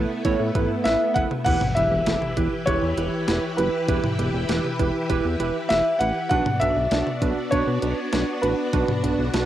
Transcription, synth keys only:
0.00 0.11 E4 medium
0.00 0.11 A4 medium
0.00 0.11 B4 loud
0.25 0.42 E4 loud
0.25 0.42 A4 loud
0.25 0.42 C#5 loud
0.55 0.72 E4 medium
0.55 0.72 A4 medium
0.55 0.72 B4 loud
0.86 1.02 E4 medium
0.86 1.02 A4 medium
0.86 1.02 B4 loud
1.16 1.33 E4 medium
1.16 1.33 A4 medium
1.16 1.33 B4 loud
1.46 1.63 E4 loud
1.46 1.63 G4 medium
1.46 1.63 B4 loud
1.76 1.93 E4 medium
1.76 1.93 G4 medium
1.76 1.93 B4 medium
2.07 2.23 E4 medium
2.07 2.23 G4 medium
2.07 2.23 A4 medium
2.37 2.54 E4 medium
2.37 2.54 G4 medium
2.37 2.54 B4 medium
2.67 2.84 E4 medium
2.67 2.84 G4 medium
2.67 2.84 B4 loud
2.98 3.14 E4 medium
2.98 3.14 G4 medium
2.98 3.14 B4 medium
3.28 3.45 E4 medium
3.28 3.45 G4 medium
3.28 3.45 B4 medium
3.58 3.75 E4 medium
3.58 3.75 G4 medium
3.58 3.75 B4 medium
3.89 4.05 E4 loud
3.89 4.05 G4 medium
3.89 4.05 B4 loud
4.19 4.36 E4 medium
4.19 4.36 G4 medium
4.19 4.36 B4 medium
4.49 4.66 E4 medium
4.49 4.66 G4 medium
4.49 4.66 B4 loud
4.79 4.96 E4 medium
4.79 4.96 G4 medium
4.79 4.96 B4 loud
5.10 5.27 E4 loud
5.10 5.26 G4 loud
5.10 5.27 B4 loud
5.40 5.57 E4 medium
5.40 5.57 G4 medium
5.40 5.57 B4 loud
5.70 5.87 E4 medium
5.70 5.87 G4 medium
5.70 5.87 B4 medium
6.01 6.17 E4 medium
6.01 6.17 G4 medium
6.01 6.17 B4 medium
6.31 6.48 D4 loud
6.31 6.48 F#4 medium
6.31 6.48 B4 loud
6.61 6.78 D4 medium
6.61 6.78 F#4 medium
6.61 6.78 B4 medium
6.92 7.08 D4 medium
6.92 7.08 F#4 medium
6.92 7.08 D5 medium
7.22 7.39 D4 medium
7.22 7.39 F#4 medium
7.22 7.39 B4 medium
7.52 7.69 D4 loud
7.52 7.69 F#4 medium
7.52 7.69 B4 loud
7.82 7.99 D4 medium
7.82 7.99 F#4 medium
7.82 7.99 B4 medium
8.13 8.30 D4 medium
8.13 8.30 F#4 medium
8.13 8.30 B4 medium
8.43 8.60 D4 medium
8.43 8.60 F#4 medium
8.43 8.60 B4 medium
8.73 8.90 D4 loud
8.73 8.90 F#4 medium
8.73 8.90 B4 loud
9.04 9.20 D4 medium
9.04 9.20 F#4 medium
9.04 9.20 B4 medium
9.34 9.45 D4 medium
9.34 9.45 F#4 medium
9.34 9.45 B4 loud

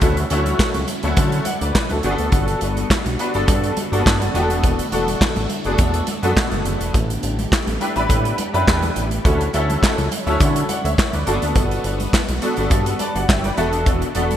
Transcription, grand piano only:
0.02 0.23 A3 medium
0.02 0.23 C#4 medium
0.02 0.23 E4 medium
0.02 0.23 F#4 medium
0.31 0.82 A3 medium
0.31 0.83 C#4 medium
0.31 0.83 E4 medium
0.31 0.83 F#4 loud
1.04 1.44 A3 medium
1.04 1.44 C#4 medium
1.04 1.44 E4 medium
1.04 1.44 F#4 medium
1.46 1.60 D5 medium
1.46 1.61 F#5 medium
1.62 1.74 B4 medium
1.62 1.74 D5 medium
1.75 1.90 B4 medium
1.91 2.03 F#4 medium
1.91 2.09 A4 medium
2.04 2.96 B3 loud
2.04 2.96 D4 medium
2.04 2.97 F#4 medium
2.04 2.11 G#4 medium
2.11 3.00 A4 loud
3.19 3.30 B3 medium
3.19 3.30 D4 medium
3.19 3.30 F#4 medium
3.19 3.30 B4 medium
3.34 3.75 B3 medium
3.34 3.75 D4 medium
3.34 3.75 F#4 medium
3.34 3.75 A4 loud
3.92 3.98 A#3 medium
3.92 4.33 D4 medium
3.92 4.33 F#4 medium
3.92 4.35 A4 loud
3.98 4.33 B3 medium
4.34 4.81 B3 medium
4.34 4.81 D4 medium
4.34 4.81 F#4 medium
4.34 4.42 G4 medium
4.42 4.85 A4 loud
4.92 5.44 B3 medium
4.92 5.44 D4 medium
4.92 5.44 F#4 medium
4.92 5.44 A4 medium
5.65 6.06 B3 medium
5.65 6.06 D4 medium
5.65 6.06 F#4 medium
5.65 5.72 G#4 medium
5.73 6.09 A4 medium
6.23 6.94 B3 loud
6.23 6.94 D4 medium
6.23 6.94 F#4 medium
6.23 6.94 A4 loud
7.80 7.91 D4 medium
7.80 7.92 E4 medium
7.80 7.92 G4 medium
7.80 7.92 B4 medium
7.95 8.36 D4 medium
7.95 8.36 E4 medium
7.95 8.36 G4 medium
7.95 8.36 B4 loud
8.53 9.04 D4 medium
8.53 9.04 E4 medium
8.53 9.05 G4 medium
8.53 9.05 B4 loud
9.24 9.46 C#4 medium
9.24 9.46 E4 medium
9.24 9.46 F#4 medium
9.24 9.46 A4 medium
9.54 10.05 C#4 medium
9.54 10.05 E4 medium
9.54 10.06 F#4 medium
9.54 10.06 A4 loud
10.26 10.67 C#4 medium
10.26 10.67 E4 medium
10.26 10.67 F#4 medium
10.26 10.67 A4 medium
10.69 10.84 D5 medium
10.69 10.83 F#5 medium
10.84 11.12 C#5 medium
10.84 11.12 E5 medium
11.13 11.41 B4 medium
11.13 11.41 D5 medium
11.26 11.33 A#3 medium
11.26 12.19 D4 medium
11.26 12.19 F#4 medium
11.26 12.20 A4 medium
11.33 12.22 B3 loud
12.42 12.53 B3 medium
12.42 12.53 D4 medium
12.42 12.53 F#4 medium
12.42 12.53 A4 loud
12.57 12.98 B3 medium
12.57 12.98 D4 medium
12.57 12.98 F#4 medium
12.57 12.98 A4 loud
13.00 13.15 B4 medium
13.00 13.14 D5 medium
13.00 13.27 A5 medium
13.15 13.28 D5 medium
13.15 13.28 F#5 medium
13.29 13.43 C#5 medium
13.29 13.43 E5 medium
13.29 13.56 G5 medium
13.44 13.72 B4 medium
13.44 13.72 D5 medium
13.57 14.04 B3 medium
13.57 14.04 D4 medium
13.57 14.04 F#4 loud
13.57 14.05 A4 loud
13.57 13.84 E5 medium
14.15 14.37 B3 medium
14.15 14.37 D4 medium
14.15 14.37 F#4 medium
14.15 14.37 A4 medium

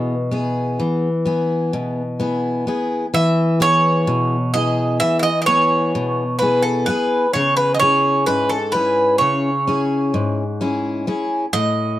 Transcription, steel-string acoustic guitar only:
0.00 0.77 B2 medium
0.00 0.14 B3 soft
0.00 0.14 E4 soft
0.00 0.14 G#4 soft
0.31 1.07 B3 soft
0.31 1.07 E4 soft
0.31 1.08 G#4 soft
0.80 1.71 E3 medium
1.25 2.01 B3 soft
1.25 2.01 E4 soft
1.25 2.02 G#4 soft
1.73 2.64 B2 medium
2.20 2.66 B3 soft
2.20 2.66 E4 soft
2.20 2.67 G#4 soft
2.67 3.05 B3 soft
2.67 3.05 E4 soft
2.67 3.05 G#4 soft
3.14 4.05 E3 medium
3.60 4.35 B3 soft
3.60 4.35 E4 soft
3.60 4.36 G#4 medium
4.07 4.98 B2 medium
4.54 5.29 B3 soft
4.54 5.29 E4 soft
4.54 5.30 G#4 soft
5.01 5.92 E3 medium
5.48 6.22 B3 soft
5.48 6.23 E4 soft
5.48 6.23 G#4 medium
5.95 6.85 B2 medium
6.42 6.87 B3 soft
6.42 6.87 E4 soft
6.42 6.88 G#4 soft
6.88 7.25 B3 soft
6.88 7.26 E4 soft
6.88 7.26 G#4 medium
7.35 8.25 C#3 medium
7.82 8.56 C#4 soft
7.82 8.56 E4 soft
7.82 8.56 G#4 medium
8.28 9.18 G#2 medium
8.74 9.49 C#4 soft
8.74 9.49 E4 soft
8.74 9.50 G#4 soft
9.21 10.11 C#3 medium
9.67 10.42 C#4 soft
9.67 10.42 E4 soft
9.67 10.43 G#4 soft
10.14 11.04 G#2 medium
10.61 11.06 C#4 soft
10.61 11.06 E4 soft
10.61 11.07 G#4 soft
11.07 11.45 C#4 soft
11.07 11.45 E4 soft
11.07 11.45 G#4 medium
11.53 11.99 A2 medium

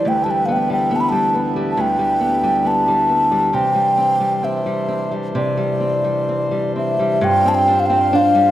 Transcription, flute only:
0.08 0.25 G5 medium
0.24 0.32 A5 medium
0.31 0.47 G5 medium
0.46 0.54 F5 medium
0.52 0.72 G5 medium
0.73 0.97 G5 medium
0.96 1.02 A5 medium
1.00 1.11 B5 medium
1.09 1.54 A5 medium
1.71 1.82 A5 medium
1.81 2.68 G5 medium
2.67 3.56 A5 medium
3.55 4.46 G5 medium
4.44 5.13 E5 medium
5.35 6.72 D5 medium
6.78 7.26 E5 medium
7.24 7.50 G5 medium
7.48 7.56 A5 medium
7.54 7.81 G5 medium
7.80 7.88 F5 medium
7.86 8.17 G5 medium
8.16 8.51 F5 medium

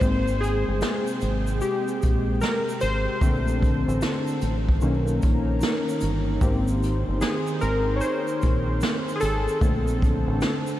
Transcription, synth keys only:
0.00 3.17 G#3 soft
0.00 3.18 A#3 soft
0.00 3.18 C4 medium
0.00 0.43 C5 loud
0.41 1.17 G#4 medium
1.62 2.44 G4 medium
2.41 2.83 A#4 medium
2.81 4.37 C5 medium
3.22 4.38 D3 medium
3.22 4.38 A3 soft
3.22 4.38 C4 medium
4.82 5.39 D#3 medium
4.82 5.39 A#3 soft
4.82 5.39 C#4 medium
6.42 7.58 A#3 soft
6.42 7.58 C4 medium
6.42 7.58 G4 soft
7.21 7.62 G#4 medium
7.61 7.94 A#4 medium
7.96 8.01 C#5 medium
8.01 8.77 C5 medium
9.16 9.21 G#4 medium
9.21 9.97 A4 loud
9.61 10.77 D3 soft
9.61 10.78 A3 soft
9.61 10.78 C4 medium

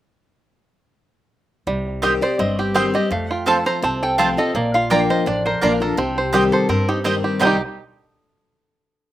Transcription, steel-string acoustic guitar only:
1.67 2.36 C3 medium
2.02 2.21 D#3 medium
2.02 2.22 G3 medium
2.02 2.22 C4 medium
2.02 2.20 G4 loud
2.21 2.39 C4 soft
2.21 2.38 G4 medium
2.39 3.08 G2 medium
2.75 2.93 D#3 medium
2.75 2.94 G3 medium
2.75 2.94 C4 medium
2.75 2.92 G4 loud
2.93 3.11 C4 medium
2.93 3.10 G4 medium
3.11 3.79 F2 medium
3.46 3.65 F3 medium
3.46 3.65 A3 medium
3.46 3.65 C4 medium
3.46 3.63 F4 medium
3.65 3.83 C4 soft
3.65 3.82 F4 medium
3.82 4.51 C3 medium
4.18 4.37 F3 medium
4.18 4.38 A3 medium
4.18 4.38 C4 medium
4.18 4.36 F4 medium
4.37 4.55 C4 medium
4.37 4.54 F4 medium
4.55 5.23 A#2 medium
4.90 5.25 F3 medium
4.90 5.25 A#3 medium
4.90 5.25 D4 medium
4.90 5.26 F4 loud
5.26 5.94 F2 medium
5.62 5.80 F3 medium
5.62 5.81 A#3 medium
5.62 5.81 D4 medium
5.62 5.79 F4 medium
5.80 5.98 D4 soft
5.80 5.97 F4 medium
5.97 6.66 C3 medium
6.32 6.67 D#3 medium
6.32 6.68 G3 medium
6.32 6.68 C4 medium
6.32 6.68 G4 medium
6.69 7.37 G2 medium
7.05 7.39 D#3 medium
7.05 7.39 G3 medium
7.05 7.40 C4 medium
7.05 7.40 G4 medium
7.40 7.55 C3 medium
7.40 7.55 D#3 medium
7.40 7.56 G3 medium
7.40 7.56 C4 loud
7.40 7.56 G4 loud

